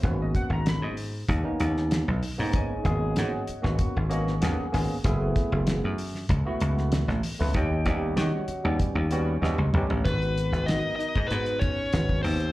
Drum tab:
HH |x-x-x-o-x-x-x-o-|x-x-x-x-x-x-x-o-|x-x-x-o-x-x-x-o-|x-x-x-x-x-x-----|
SD |----o------oo---|----o--o---oo-o-|--o-o--o---ooo--|----o-------o---|
T2 |----------------|----------------|----------------|--------------o-|
FT |----------------|----------------|----------------|---------------o|
BD |o-o-----o-------|o-o-----o-------|o-o-----o-------|o-o-----o-------|

HH |xxxxx-xxxxx-x-ox|
SD |----o-------o---|
T2 |----------------|
FT |----------------|
BD |o------o--o--o--|